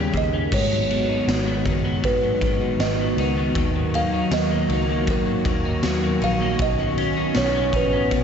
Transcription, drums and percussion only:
0.14 kick, closed hi-hat
0.52 kick, crash
0.91 ride
1.28 snare, ride, tambourine
1.66 kick, ride
2.04 kick, ride
2.41 kick, ride
2.80 snare, ride, tambourine
3.18 ride
3.55 kick, ride
3.94 ride
4.31 snare, ride, tambourine
4.70 ride
5.07 kick, ride
5.45 kick, ride
5.83 snare, ride, tambourine
6.22 ride
6.59 kick, ride
6.98 ride
7.35 snare, ride, tambourine
7.73 kick, ride
8.11 kick, ride

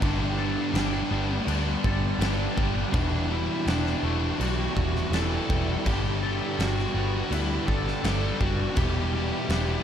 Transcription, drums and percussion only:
0.02 kick, crash
0.75 snare, crash
1.48 crash
1.84 kick
2.21 snare, crash
2.58 kick
2.94 kick, crash
3.68 snare, crash
3.86 snare
4.41 crash
4.77 kick
4.96 snare
5.13 snare, crash
5.50 kick
5.86 kick, crash
6.60 snare, crash
6.79 snare
7.32 crash
7.68 kick
7.88 snare
8.04 snare, crash
8.41 kick
8.76 kick, crash
9.50 snare, crash

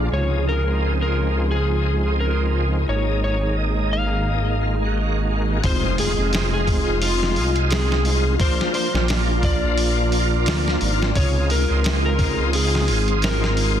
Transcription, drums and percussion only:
5.64 kick, open hi-hat
5.98 open hi-hat
6.33 snare, open hi-hat
6.67 kick, open hi-hat
7.02 open hi-hat
7.23 snare
7.36 open hi-hat
7.56 closed hi-hat
7.71 snare, open hi-hat
7.92 snare
8.05 open hi-hat
8.40 kick, open hi-hat
8.61 snare
8.74 open hi-hat
8.95 snare
9.08 snare, open hi-hat
9.43 kick, open hi-hat
9.78 open hi-hat
10.12 open hi-hat
10.46 snare, open hi-hat
10.68 snare
10.81 open hi-hat
11.02 snare
11.15 kick, open hi-hat
11.50 open hi-hat
11.84 snare, open hi-hat
12.19 kick, open hi-hat
12.53 open hi-hat
12.75 snare
12.88 open hi-hat
13.08 closed hi-hat
13.22 snare, open hi-hat
13.44 snare
13.57 open hi-hat

